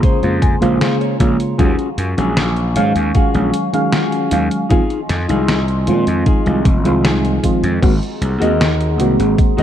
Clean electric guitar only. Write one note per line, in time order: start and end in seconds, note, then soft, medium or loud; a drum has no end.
0.02 0.42 C#4 medium
0.02 0.42 G#4 medium
0.02 0.42 C5 loud
0.42 0.61 G#5 medium
0.62 0.80 F5 medium
0.81 1.20 C#4 medium
0.81 1.20 G#4 medium
0.81 1.21 C5 loud
0.81 1.00 F5 medium
1.01 1.19 C#5 medium
1.20 1.56 C#5 medium
1.58 1.88 C#4 loud
1.58 1.88 F4 medium
1.58 1.89 F#4 medium
1.58 1.89 G#4 loud
2.17 2.47 C#4 medium
2.17 2.47 F4 medium
2.17 2.47 F#4 medium
2.17 2.48 G#4 loud
2.75 muted clean electric guitar stroke soft
3.14 3.53 C#4 medium
3.14 3.54 F4 medium
3.14 3.54 F#4 medium
3.14 3.54 G#4 medium
3.92 4.31 C#4 medium
3.92 4.32 F4 medium
3.92 4.32 F#4 medium
3.92 4.32 G#4 medium
4.69 4.99 D#4 loud
4.69 5.00 F4 loud
4.69 5.00 G#4 loud
5.28 5.58 D#4 medium
5.28 5.58 F4 medium
5.28 5.59 G#4 loud
5.87 muted clean electric guitar stroke soft
6.26 6.65 D#4 medium
6.26 6.66 F4 medium
6.26 6.66 G#4 loud
7.03 7.43 D#4 medium
7.03 7.43 F4 medium
7.03 7.44 G#4 medium
7.81 muted clean electric guitar stroke loud
8.01 muted clean electric guitar stroke soft
8.40 8.89 F#4 medium
8.40 8.89 G#4 medium
8.40 8.90 A#4 medium
8.40 8.90 D#5 loud
9.37 muted clean electric guitar stroke medium
9.57 9.63 F#4 medium
9.57 9.63 G#4 medium
9.57 9.63 A#4 medium
9.57 9.63 D#5 loud